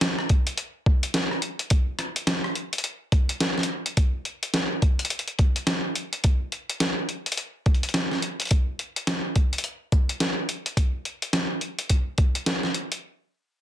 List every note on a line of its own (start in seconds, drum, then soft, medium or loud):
0.01 snare loud
0.01 closed hi-hat medium
0.19 cross-stick soft
0.29 kick loud
0.29 closed hi-hat soft
0.47 closed hi-hat soft
0.57 closed hi-hat medium
0.86 kick loud
1.03 closed hi-hat soft
1.14 snare loud
1.14 closed hi-hat medium
1.31 cross-stick soft
1.42 closed hi-hat medium
1.59 closed hi-hat soft
1.70 kick loud
1.70 closed hi-hat medium
1.99 cross-stick soft
1.99 closed hi-hat soft
2.16 closed hi-hat soft
2.27 snare loud
2.27 closed hi-hat medium
2.44 cross-stick soft
2.55 closed hi-hat soft
2.73 closed hi-hat soft
2.78 closed hi-hat medium
2.84 closed hi-hat medium
3.12 kick loud
3.12 closed hi-hat soft
3.29 closed hi-hat soft
3.40 snare loud
3.40 closed hi-hat medium
3.58 snare soft
3.63 closed hi-hat soft
3.86 closed hi-hat soft
3.97 kick loud
3.97 closed hi-hat medium
4.25 closed hi-hat soft
4.43 closed hi-hat soft
4.54 snare loud
4.54 closed hi-hat medium
4.82 kick loud
4.82 closed hi-hat soft
4.99 closed hi-hat soft
5.05 closed hi-hat medium
5.10 closed hi-hat medium
5.19 closed hi-hat soft
5.28 closed hi-hat soft
5.39 kick loud
5.39 closed hi-hat soft
5.56 closed hi-hat soft
5.67 snare loud
5.67 closed hi-hat medium
5.95 closed hi-hat soft
6.13 closed hi-hat soft
6.24 kick loud
6.24 closed hi-hat medium
6.52 closed hi-hat soft
6.70 closed hi-hat soft
6.80 snare loud
6.80 closed hi-hat medium
7.09 closed hi-hat soft
7.26 closed hi-hat soft
7.32 closed hi-hat medium
7.37 closed hi-hat medium
7.66 kick medium
7.66 closed hi-hat soft
7.74 closed hi-hat soft
7.83 closed hi-hat soft
7.89 closed hi-hat soft
7.94 snare loud
7.94 closed hi-hat medium
8.11 snare soft
8.22 closed hi-hat soft
8.40 closed hi-hat soft
8.42 closed hi-hat soft
8.45 closed hi-hat soft
8.47 closed hi-hat soft
8.49 closed hi-hat soft
8.51 kick loud
8.51 closed hi-hat medium
8.79 closed hi-hat soft
8.96 closed hi-hat soft
9.07 snare loud
9.07 closed hi-hat medium
9.36 kick medium
9.36 closed hi-hat soft
9.53 closed hi-hat soft
9.58 closed hi-hat medium
9.64 closed hi-hat medium
9.92 kick medium
9.92 closed hi-hat soft
10.09 closed hi-hat soft
10.20 snare loud
10.20 closed hi-hat medium
10.49 closed hi-hat soft
10.66 closed hi-hat soft
10.77 kick loud
10.77 closed hi-hat medium
11.05 closed hi-hat soft
11.22 closed hi-hat soft
11.33 snare loud
11.33 closed hi-hat medium
11.61 closed hi-hat soft
11.79 closed hi-hat soft
11.89 kick medium
11.89 closed hi-hat medium
12.18 kick medium
12.18 closed hi-hat soft
12.35 closed hi-hat soft
12.46 snare loud
12.46 closed hi-hat medium
12.63 snare soft
12.74 closed hi-hat soft
12.92 closed hi-hat soft